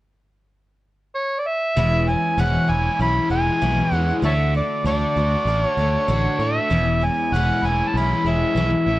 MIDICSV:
0, 0, Header, 1, 5, 480
1, 0, Start_track
1, 0, Tempo, 616650
1, 1373, Time_signature, 4, 2, 24, 8
1, 7001, End_track
2, 0, Start_track
2, 0, Title_t, "Harmonica"
2, 0, Program_c, 0, 22
2, 894, Note_on_c, 0, 73, 79
2, 1084, Note_on_c, 0, 74, 67
2, 1095, Note_off_c, 0, 73, 0
2, 1146, Note_on_c, 0, 76, 100
2, 1158, Note_off_c, 0, 74, 0
2, 1624, Note_on_c, 0, 80, 86
2, 1635, Note_off_c, 0, 76, 0
2, 1869, Note_on_c, 0, 78, 94
2, 1880, Note_off_c, 0, 80, 0
2, 2107, Note_on_c, 0, 80, 89
2, 2119, Note_off_c, 0, 78, 0
2, 2340, Note_off_c, 0, 80, 0
2, 2347, Note_on_c, 0, 83, 102
2, 2563, Note_off_c, 0, 83, 0
2, 2579, Note_on_c, 0, 80, 96
2, 3069, Note_off_c, 0, 80, 0
2, 3069, Note_on_c, 0, 78, 96
2, 3264, Note_off_c, 0, 78, 0
2, 3309, Note_on_c, 0, 69, 62
2, 3309, Note_on_c, 0, 73, 62
2, 3309, Note_on_c, 0, 76, 89
2, 3361, Note_off_c, 0, 69, 0
2, 3375, Note_off_c, 0, 73, 0
2, 3525, Note_off_c, 0, 76, 0
2, 3552, Note_on_c, 0, 74, 73
2, 3766, Note_off_c, 0, 74, 0
2, 3790, Note_on_c, 0, 74, 95
2, 4398, Note_off_c, 0, 74, 0
2, 4398, Note_on_c, 0, 73, 95
2, 4759, Note_off_c, 0, 73, 0
2, 4759, Note_on_c, 0, 73, 79
2, 5002, Note_on_c, 0, 76, 96
2, 5014, Note_off_c, 0, 73, 0
2, 5483, Note_on_c, 0, 80, 81
2, 5495, Note_off_c, 0, 76, 0
2, 5719, Note_on_c, 0, 78, 93
2, 5731, Note_off_c, 0, 80, 0
2, 5963, Note_on_c, 0, 80, 83
2, 5975, Note_off_c, 0, 78, 0
2, 6133, Note_on_c, 0, 81, 73
2, 6145, Note_off_c, 0, 80, 0
2, 6208, Note_on_c, 0, 83, 102
2, 6220, Note_off_c, 0, 81, 0
2, 6453, Note_on_c, 0, 76, 82
2, 6464, Note_off_c, 0, 83, 0
2, 7001, Note_off_c, 0, 76, 0
2, 7001, End_track
3, 0, Start_track
3, 0, Title_t, "Twelve-string acoustic guitar"
3, 0, Program_c, 1, 25
3, 1373, Note_on_c, 1, 40, 86
3, 1375, Note_on_c, 1, 47, 79
3, 1378, Note_on_c, 1, 56, 82
3, 1383, Note_on_c, 1, 61, 80
3, 1384, Note_on_c, 1, 52, 77
3, 1388, Note_on_c, 1, 64, 89
3, 1605, Note_off_c, 1, 64, 0
3, 1613, Note_off_c, 1, 40, 0
3, 1614, Note_off_c, 1, 47, 0
3, 1614, Note_on_c, 1, 64, 45
3, 1615, Note_off_c, 1, 56, 0
3, 1618, Note_off_c, 1, 52, 0
3, 1618, Note_off_c, 1, 61, 0
3, 1627, Note_on_c, 1, 61, 46
3, 1634, Note_on_c, 1, 56, 43
3, 1637, Note_on_c, 1, 52, 40
3, 1850, Note_off_c, 1, 52, 0
3, 1852, Note_off_c, 1, 56, 0
3, 1852, Note_on_c, 1, 40, 76
3, 1853, Note_off_c, 1, 64, 0
3, 1854, Note_off_c, 1, 61, 0
3, 1855, Note_on_c, 1, 47, 75
3, 1860, Note_on_c, 1, 52, 75
3, 1861, Note_on_c, 1, 56, 88
3, 1863, Note_on_c, 1, 61, 76
3, 1865, Note_on_c, 1, 64, 87
3, 2075, Note_off_c, 1, 64, 0
3, 2084, Note_on_c, 1, 64, 52
3, 2085, Note_off_c, 1, 61, 0
3, 2092, Note_off_c, 1, 40, 0
3, 2092, Note_off_c, 1, 56, 0
3, 2094, Note_off_c, 1, 47, 0
3, 2094, Note_off_c, 1, 52, 0
3, 2094, Note_on_c, 1, 61, 44
3, 2102, Note_on_c, 1, 56, 44
3, 2103, Note_on_c, 1, 52, 39
3, 2321, Note_off_c, 1, 52, 0
3, 2328, Note_off_c, 1, 64, 0
3, 2330, Note_off_c, 1, 56, 0
3, 2331, Note_off_c, 1, 61, 0
3, 2331, Note_on_c, 1, 52, 52
3, 2340, Note_on_c, 1, 56, 63
3, 2340, Note_on_c, 1, 61, 60
3, 2348, Note_on_c, 1, 64, 64
3, 2554, Note_off_c, 1, 64, 0
3, 2562, Note_off_c, 1, 61, 0
3, 2564, Note_on_c, 1, 64, 56
3, 2568, Note_off_c, 1, 56, 0
3, 2571, Note_off_c, 1, 52, 0
3, 2571, Note_on_c, 1, 61, 46
3, 2578, Note_on_c, 1, 56, 42
3, 2584, Note_on_c, 1, 52, 40
3, 2805, Note_off_c, 1, 52, 0
3, 2806, Note_off_c, 1, 56, 0
3, 2808, Note_off_c, 1, 64, 0
3, 2812, Note_off_c, 1, 61, 0
3, 2814, Note_on_c, 1, 40, 66
3, 2814, Note_on_c, 1, 47, 72
3, 2815, Note_on_c, 1, 52, 72
3, 2815, Note_on_c, 1, 56, 73
3, 2821, Note_on_c, 1, 61, 69
3, 2827, Note_on_c, 1, 64, 80
3, 3035, Note_off_c, 1, 64, 0
3, 3044, Note_on_c, 1, 64, 56
3, 3048, Note_off_c, 1, 61, 0
3, 3053, Note_off_c, 1, 40, 0
3, 3053, Note_off_c, 1, 47, 0
3, 3053, Note_off_c, 1, 52, 0
3, 3054, Note_off_c, 1, 56, 0
3, 3057, Note_on_c, 1, 61, 50
3, 3063, Note_on_c, 1, 56, 48
3, 3068, Note_on_c, 1, 52, 42
3, 3284, Note_off_c, 1, 52, 0
3, 3287, Note_on_c, 1, 50, 70
3, 3288, Note_off_c, 1, 64, 0
3, 3295, Note_off_c, 1, 56, 0
3, 3295, Note_off_c, 1, 61, 0
3, 3298, Note_on_c, 1, 57, 74
3, 3299, Note_on_c, 1, 62, 76
3, 3303, Note_on_c, 1, 66, 78
3, 3529, Note_off_c, 1, 50, 0
3, 3530, Note_off_c, 1, 66, 0
3, 3535, Note_off_c, 1, 57, 0
3, 3535, Note_off_c, 1, 62, 0
3, 3539, Note_on_c, 1, 66, 49
3, 3555, Note_on_c, 1, 62, 43
3, 3564, Note_on_c, 1, 57, 37
3, 3776, Note_off_c, 1, 66, 0
3, 3777, Note_off_c, 1, 57, 0
3, 3779, Note_on_c, 1, 50, 76
3, 3781, Note_off_c, 1, 62, 0
3, 3786, Note_on_c, 1, 57, 77
3, 3791, Note_on_c, 1, 62, 83
3, 3798, Note_on_c, 1, 66, 86
3, 4012, Note_off_c, 1, 66, 0
3, 4016, Note_off_c, 1, 50, 0
3, 4019, Note_off_c, 1, 57, 0
3, 4021, Note_off_c, 1, 62, 0
3, 4022, Note_on_c, 1, 66, 50
3, 4042, Note_on_c, 1, 57, 38
3, 4255, Note_off_c, 1, 57, 0
3, 4257, Note_off_c, 1, 66, 0
3, 4257, Note_on_c, 1, 50, 48
3, 4264, Note_on_c, 1, 57, 54
3, 4268, Note_on_c, 1, 62, 60
3, 4278, Note_on_c, 1, 66, 66
3, 4484, Note_off_c, 1, 66, 0
3, 4493, Note_on_c, 1, 66, 55
3, 4495, Note_off_c, 1, 50, 0
3, 4498, Note_off_c, 1, 57, 0
3, 4500, Note_off_c, 1, 62, 0
3, 4508, Note_on_c, 1, 62, 51
3, 4522, Note_on_c, 1, 57, 51
3, 4727, Note_off_c, 1, 57, 0
3, 4731, Note_off_c, 1, 62, 0
3, 4732, Note_on_c, 1, 50, 73
3, 4733, Note_off_c, 1, 66, 0
3, 4736, Note_on_c, 1, 57, 74
3, 4740, Note_on_c, 1, 62, 69
3, 4745, Note_on_c, 1, 66, 81
3, 4972, Note_off_c, 1, 50, 0
3, 4972, Note_off_c, 1, 66, 0
3, 4974, Note_off_c, 1, 57, 0
3, 4976, Note_off_c, 1, 62, 0
3, 4981, Note_on_c, 1, 66, 50
3, 4993, Note_on_c, 1, 62, 42
3, 5000, Note_on_c, 1, 57, 40
3, 5214, Note_on_c, 1, 40, 61
3, 5217, Note_off_c, 1, 66, 0
3, 5217, Note_on_c, 1, 47, 62
3, 5221, Note_off_c, 1, 57, 0
3, 5221, Note_on_c, 1, 52, 67
3, 5223, Note_off_c, 1, 62, 0
3, 5224, Note_on_c, 1, 56, 72
3, 5227, Note_on_c, 1, 61, 69
3, 5231, Note_on_c, 1, 64, 75
3, 5449, Note_off_c, 1, 64, 0
3, 5453, Note_off_c, 1, 40, 0
3, 5454, Note_off_c, 1, 47, 0
3, 5457, Note_off_c, 1, 52, 0
3, 5458, Note_off_c, 1, 56, 0
3, 5458, Note_off_c, 1, 61, 0
3, 5459, Note_on_c, 1, 64, 53
3, 5467, Note_on_c, 1, 61, 45
3, 5475, Note_on_c, 1, 56, 44
3, 5483, Note_on_c, 1, 52, 43
3, 5695, Note_off_c, 1, 64, 0
3, 5700, Note_off_c, 1, 61, 0
3, 5704, Note_off_c, 1, 56, 0
3, 5708, Note_off_c, 1, 52, 0
3, 5712, Note_on_c, 1, 40, 77
3, 5717, Note_on_c, 1, 47, 78
3, 5722, Note_on_c, 1, 52, 70
3, 5726, Note_on_c, 1, 64, 85
3, 5727, Note_on_c, 1, 56, 83
3, 5730, Note_on_c, 1, 61, 83
3, 5941, Note_off_c, 1, 64, 0
3, 5942, Note_off_c, 1, 40, 0
3, 5945, Note_off_c, 1, 47, 0
3, 5947, Note_off_c, 1, 52, 0
3, 5947, Note_off_c, 1, 61, 0
3, 5950, Note_off_c, 1, 56, 0
3, 5951, Note_on_c, 1, 64, 46
3, 5957, Note_on_c, 1, 61, 43
3, 5961, Note_on_c, 1, 56, 46
3, 5972, Note_on_c, 1, 52, 41
3, 6181, Note_off_c, 1, 64, 0
3, 6183, Note_off_c, 1, 52, 0
3, 6184, Note_off_c, 1, 61, 0
3, 6186, Note_off_c, 1, 56, 0
3, 6192, Note_on_c, 1, 52, 50
3, 6205, Note_on_c, 1, 56, 56
3, 6207, Note_on_c, 1, 61, 63
3, 6214, Note_on_c, 1, 64, 69
3, 6420, Note_off_c, 1, 64, 0
3, 6422, Note_off_c, 1, 52, 0
3, 6425, Note_off_c, 1, 61, 0
3, 6429, Note_off_c, 1, 56, 0
3, 6429, Note_on_c, 1, 64, 52
3, 6434, Note_on_c, 1, 61, 53
3, 6444, Note_on_c, 1, 56, 49
3, 6451, Note_on_c, 1, 52, 43
3, 6661, Note_off_c, 1, 64, 0
3, 6661, Note_on_c, 1, 40, 72
3, 6663, Note_off_c, 1, 61, 0
3, 6664, Note_off_c, 1, 52, 0
3, 6665, Note_off_c, 1, 56, 0
3, 6669, Note_on_c, 1, 47, 69
3, 6674, Note_on_c, 1, 52, 76
3, 6674, Note_on_c, 1, 56, 81
3, 6676, Note_on_c, 1, 61, 70
3, 6682, Note_on_c, 1, 64, 84
3, 6887, Note_off_c, 1, 64, 0
3, 6897, Note_off_c, 1, 40, 0
3, 6897, Note_on_c, 1, 64, 51
3, 6900, Note_off_c, 1, 61, 0
3, 6901, Note_off_c, 1, 47, 0
3, 6903, Note_off_c, 1, 52, 0
3, 6903, Note_off_c, 1, 56, 0
3, 6909, Note_on_c, 1, 61, 46
3, 6919, Note_on_c, 1, 57, 43
3, 7001, Note_off_c, 1, 57, 0
3, 7001, Note_off_c, 1, 61, 0
3, 7001, Note_off_c, 1, 64, 0
3, 7001, End_track
4, 0, Start_track
4, 0, Title_t, "Overdriven electric guitar"
4, 0, Program_c, 2, 29
4, 6892, Note_on_c, 2, 45, 68
4, 7001, Note_off_c, 2, 45, 0
4, 7001, End_track
5, 0, Start_track
5, 0, Title_t, "Fingered electric bass"
5, 0, Program_c, 3, 33
5, 1375, Note_on_c, 3, 28, 85
5, 1668, Note_off_c, 3, 28, 0
5, 1848, Note_on_c, 3, 28, 90
5, 1997, Note_off_c, 3, 28, 0
5, 2096, Note_on_c, 3, 28, 82
5, 2242, Note_off_c, 3, 28, 0
5, 2330, Note_on_c, 3, 35, 84
5, 2478, Note_off_c, 3, 35, 0
5, 2569, Note_on_c, 3, 28, 83
5, 2717, Note_off_c, 3, 28, 0
5, 2818, Note_on_c, 3, 35, 86
5, 2963, Note_off_c, 3, 35, 0
5, 3049, Note_on_c, 3, 40, 81
5, 3197, Note_off_c, 3, 40, 0
5, 3287, Note_on_c, 3, 38, 91
5, 3583, Note_off_c, 3, 38, 0
5, 3771, Note_on_c, 3, 38, 91
5, 3918, Note_off_c, 3, 38, 0
5, 4017, Note_on_c, 3, 38, 82
5, 4162, Note_off_c, 3, 38, 0
5, 4242, Note_on_c, 3, 33, 86
5, 4392, Note_off_c, 3, 33, 0
5, 4490, Note_on_c, 3, 38, 77
5, 4638, Note_off_c, 3, 38, 0
5, 4733, Note_on_c, 3, 33, 85
5, 4880, Note_off_c, 3, 33, 0
5, 4973, Note_on_c, 3, 45, 74
5, 5120, Note_off_c, 3, 45, 0
5, 5223, Note_on_c, 3, 28, 94
5, 5514, Note_off_c, 3, 28, 0
5, 5697, Note_on_c, 3, 28, 88
5, 5843, Note_off_c, 3, 28, 0
5, 5935, Note_on_c, 3, 28, 78
5, 6081, Note_off_c, 3, 28, 0
5, 6178, Note_on_c, 3, 35, 87
5, 6323, Note_off_c, 3, 35, 0
5, 6417, Note_on_c, 3, 28, 80
5, 6563, Note_off_c, 3, 28, 0
5, 6654, Note_on_c, 3, 35, 81
5, 6801, Note_off_c, 3, 35, 0
5, 6899, Note_on_c, 3, 33, 74
5, 7001, Note_off_c, 3, 33, 0
5, 7001, End_track
0, 0, End_of_file